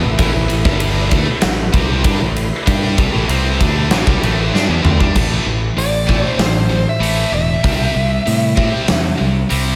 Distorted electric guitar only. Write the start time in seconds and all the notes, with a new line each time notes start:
0.04 A2 E3
0.18 A2 E3
0.33 A2 E3
0.48 A2 E3
0.64 G2 D3 G3
1.11 D3 A3
1.26 muted distorted electric guitar stroke
1.41 A2 E3
1.73 C3 G3 C4
2.03 G3 D4
2.19 A2 E3
2.66 G3 D4 G4
2.97 C3 G3
3.13 A2 E3
3.30 C3 G3 C4
3.61 D3 A3 D4
3.92 A2 E3
4.07 C3 G3
4.22 A2 E3 A3
4.54 G3 D4
4.67 E3 B3
4.83 D3 A3
5.00 G3 D4
5.15 A2 E3 A3
5.46 A2 E3
5.77 A2 E3
6.07 A2 E3 A3
6.39 A2 E3
6.69 A2 E3
7.00 A2 E3 A3
7.32 A2 E3
7.64 C3 G3 C4
7.94 C3 G3
8.26 C3 G3
8.56 C3 G3 C4
8.85 C3 G3
9.17 C3 G3
9.49 C3 G3 C4